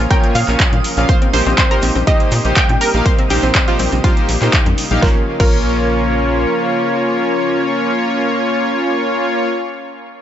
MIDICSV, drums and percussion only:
0, 0, Header, 1, 2, 480
1, 0, Start_track
1, 0, Tempo, 491803
1, 1064, Time_signature, 4, 2, 24, 8
1, 9973, End_track
2, 0, Start_track
2, 0, Title_t, "Drums"
2, 103, Note_on_c, 9, 36, 117
2, 105, Note_on_c, 9, 42, 68
2, 116, Note_on_c, 9, 82, 36
2, 200, Note_off_c, 9, 36, 0
2, 202, Note_off_c, 9, 42, 0
2, 214, Note_off_c, 9, 82, 0
2, 230, Note_on_c, 9, 42, 37
2, 327, Note_off_c, 9, 42, 0
2, 342, Note_on_c, 9, 82, 90
2, 344, Note_on_c, 9, 46, 105
2, 440, Note_off_c, 9, 82, 0
2, 442, Note_off_c, 9, 46, 0
2, 470, Note_on_c, 9, 42, 39
2, 471, Note_on_c, 9, 39, 35
2, 472, Note_on_c, 9, 82, 54
2, 568, Note_off_c, 9, 42, 0
2, 569, Note_off_c, 9, 39, 0
2, 569, Note_off_c, 9, 82, 0
2, 582, Note_on_c, 9, 82, 40
2, 583, Note_on_c, 9, 36, 107
2, 584, Note_on_c, 9, 42, 69
2, 586, Note_on_c, 9, 39, 115
2, 679, Note_off_c, 9, 82, 0
2, 680, Note_off_c, 9, 36, 0
2, 682, Note_off_c, 9, 42, 0
2, 683, Note_off_c, 9, 39, 0
2, 709, Note_on_c, 9, 63, 91
2, 709, Note_on_c, 9, 64, 77
2, 710, Note_on_c, 9, 42, 40
2, 806, Note_off_c, 9, 63, 0
2, 806, Note_off_c, 9, 64, 0
2, 807, Note_off_c, 9, 42, 0
2, 823, Note_on_c, 9, 46, 106
2, 827, Note_on_c, 9, 82, 86
2, 921, Note_off_c, 9, 46, 0
2, 925, Note_off_c, 9, 82, 0
2, 944, Note_on_c, 9, 82, 56
2, 949, Note_on_c, 9, 42, 40
2, 1042, Note_off_c, 9, 82, 0
2, 1046, Note_off_c, 9, 42, 0
2, 1060, Note_on_c, 9, 82, 38
2, 1063, Note_on_c, 9, 36, 118
2, 1063, Note_on_c, 9, 42, 68
2, 1158, Note_off_c, 9, 82, 0
2, 1160, Note_off_c, 9, 36, 0
2, 1161, Note_off_c, 9, 42, 0
2, 1189, Note_on_c, 9, 42, 43
2, 1287, Note_off_c, 9, 42, 0
2, 1303, Note_on_c, 9, 46, 102
2, 1303, Note_on_c, 9, 63, 89
2, 1313, Note_on_c, 9, 82, 92
2, 1400, Note_off_c, 9, 63, 0
2, 1401, Note_off_c, 9, 46, 0
2, 1410, Note_off_c, 9, 82, 0
2, 1430, Note_on_c, 9, 82, 45
2, 1528, Note_off_c, 9, 82, 0
2, 1542, Note_on_c, 9, 36, 102
2, 1544, Note_on_c, 9, 42, 70
2, 1545, Note_on_c, 9, 39, 115
2, 1545, Note_on_c, 9, 82, 36
2, 1640, Note_off_c, 9, 36, 0
2, 1641, Note_off_c, 9, 42, 0
2, 1643, Note_off_c, 9, 39, 0
2, 1643, Note_off_c, 9, 82, 0
2, 1669, Note_on_c, 9, 42, 43
2, 1767, Note_off_c, 9, 42, 0
2, 1776, Note_on_c, 9, 82, 86
2, 1783, Note_on_c, 9, 46, 97
2, 1874, Note_off_c, 9, 82, 0
2, 1881, Note_off_c, 9, 46, 0
2, 1908, Note_on_c, 9, 42, 42
2, 1908, Note_on_c, 9, 63, 67
2, 1913, Note_on_c, 9, 82, 50
2, 2006, Note_off_c, 9, 42, 0
2, 2006, Note_off_c, 9, 63, 0
2, 2011, Note_off_c, 9, 82, 0
2, 2022, Note_on_c, 9, 36, 117
2, 2023, Note_on_c, 9, 42, 74
2, 2120, Note_off_c, 9, 36, 0
2, 2120, Note_off_c, 9, 42, 0
2, 2149, Note_on_c, 9, 42, 39
2, 2246, Note_off_c, 9, 42, 0
2, 2259, Note_on_c, 9, 82, 81
2, 2263, Note_on_c, 9, 46, 104
2, 2357, Note_off_c, 9, 82, 0
2, 2360, Note_off_c, 9, 46, 0
2, 2387, Note_on_c, 9, 82, 45
2, 2388, Note_on_c, 9, 42, 41
2, 2485, Note_off_c, 9, 82, 0
2, 2486, Note_off_c, 9, 42, 0
2, 2503, Note_on_c, 9, 36, 106
2, 2503, Note_on_c, 9, 42, 67
2, 2504, Note_on_c, 9, 39, 124
2, 2507, Note_on_c, 9, 82, 40
2, 2600, Note_off_c, 9, 36, 0
2, 2600, Note_off_c, 9, 42, 0
2, 2602, Note_off_c, 9, 39, 0
2, 2604, Note_off_c, 9, 82, 0
2, 2629, Note_on_c, 9, 42, 41
2, 2629, Note_on_c, 9, 63, 97
2, 2726, Note_off_c, 9, 42, 0
2, 2727, Note_off_c, 9, 63, 0
2, 2742, Note_on_c, 9, 46, 108
2, 2747, Note_on_c, 9, 82, 92
2, 2840, Note_off_c, 9, 46, 0
2, 2844, Note_off_c, 9, 82, 0
2, 2869, Note_on_c, 9, 42, 40
2, 2870, Note_on_c, 9, 82, 55
2, 2966, Note_off_c, 9, 42, 0
2, 2968, Note_off_c, 9, 82, 0
2, 2981, Note_on_c, 9, 82, 35
2, 2983, Note_on_c, 9, 36, 115
2, 2983, Note_on_c, 9, 42, 73
2, 3079, Note_off_c, 9, 82, 0
2, 3080, Note_off_c, 9, 36, 0
2, 3081, Note_off_c, 9, 42, 0
2, 3109, Note_on_c, 9, 42, 41
2, 3206, Note_off_c, 9, 42, 0
2, 3222, Note_on_c, 9, 82, 88
2, 3223, Note_on_c, 9, 63, 95
2, 3224, Note_on_c, 9, 46, 105
2, 3319, Note_off_c, 9, 82, 0
2, 3321, Note_off_c, 9, 63, 0
2, 3322, Note_off_c, 9, 46, 0
2, 3350, Note_on_c, 9, 42, 43
2, 3353, Note_on_c, 9, 82, 56
2, 3447, Note_off_c, 9, 42, 0
2, 3451, Note_off_c, 9, 82, 0
2, 3463, Note_on_c, 9, 36, 97
2, 3463, Note_on_c, 9, 42, 72
2, 3464, Note_on_c, 9, 39, 122
2, 3467, Note_on_c, 9, 82, 39
2, 3561, Note_off_c, 9, 36, 0
2, 3561, Note_off_c, 9, 42, 0
2, 3562, Note_off_c, 9, 39, 0
2, 3565, Note_off_c, 9, 82, 0
2, 3589, Note_on_c, 9, 42, 41
2, 3686, Note_off_c, 9, 42, 0
2, 3702, Note_on_c, 9, 82, 97
2, 3703, Note_on_c, 9, 46, 102
2, 3704, Note_on_c, 9, 64, 85
2, 3799, Note_off_c, 9, 82, 0
2, 3801, Note_off_c, 9, 46, 0
2, 3802, Note_off_c, 9, 64, 0
2, 3830, Note_on_c, 9, 42, 42
2, 3830, Note_on_c, 9, 63, 68
2, 3833, Note_on_c, 9, 82, 54
2, 3927, Note_off_c, 9, 42, 0
2, 3927, Note_off_c, 9, 63, 0
2, 3931, Note_off_c, 9, 82, 0
2, 3943, Note_on_c, 9, 36, 115
2, 3944, Note_on_c, 9, 42, 75
2, 3948, Note_on_c, 9, 82, 40
2, 4041, Note_off_c, 9, 36, 0
2, 4041, Note_off_c, 9, 42, 0
2, 4046, Note_off_c, 9, 82, 0
2, 4070, Note_on_c, 9, 42, 42
2, 4167, Note_off_c, 9, 42, 0
2, 4184, Note_on_c, 9, 46, 102
2, 4194, Note_on_c, 9, 82, 93
2, 4282, Note_off_c, 9, 46, 0
2, 4291, Note_off_c, 9, 82, 0
2, 4310, Note_on_c, 9, 42, 42
2, 4311, Note_on_c, 9, 39, 39
2, 4314, Note_on_c, 9, 82, 52
2, 4408, Note_off_c, 9, 42, 0
2, 4409, Note_off_c, 9, 39, 0
2, 4412, Note_off_c, 9, 82, 0
2, 4424, Note_on_c, 9, 36, 107
2, 4425, Note_on_c, 9, 42, 75
2, 4426, Note_on_c, 9, 39, 124
2, 4426, Note_on_c, 9, 82, 38
2, 4522, Note_off_c, 9, 36, 0
2, 4523, Note_off_c, 9, 42, 0
2, 4524, Note_off_c, 9, 39, 0
2, 4524, Note_off_c, 9, 82, 0
2, 4550, Note_on_c, 9, 42, 42
2, 4550, Note_on_c, 9, 63, 90
2, 4550, Note_on_c, 9, 64, 78
2, 4648, Note_off_c, 9, 42, 0
2, 4648, Note_off_c, 9, 63, 0
2, 4648, Note_off_c, 9, 64, 0
2, 4664, Note_on_c, 9, 46, 109
2, 4664, Note_on_c, 9, 82, 87
2, 4762, Note_off_c, 9, 46, 0
2, 4762, Note_off_c, 9, 82, 0
2, 4789, Note_on_c, 9, 82, 50
2, 4790, Note_on_c, 9, 42, 42
2, 4791, Note_on_c, 9, 64, 86
2, 4887, Note_off_c, 9, 82, 0
2, 4888, Note_off_c, 9, 42, 0
2, 4888, Note_off_c, 9, 64, 0
2, 4904, Note_on_c, 9, 36, 114
2, 4904, Note_on_c, 9, 38, 81
2, 5002, Note_off_c, 9, 36, 0
2, 5002, Note_off_c, 9, 38, 0
2, 5270, Note_on_c, 9, 36, 114
2, 5270, Note_on_c, 9, 49, 86
2, 5367, Note_off_c, 9, 36, 0
2, 5368, Note_off_c, 9, 49, 0
2, 9973, End_track
0, 0, End_of_file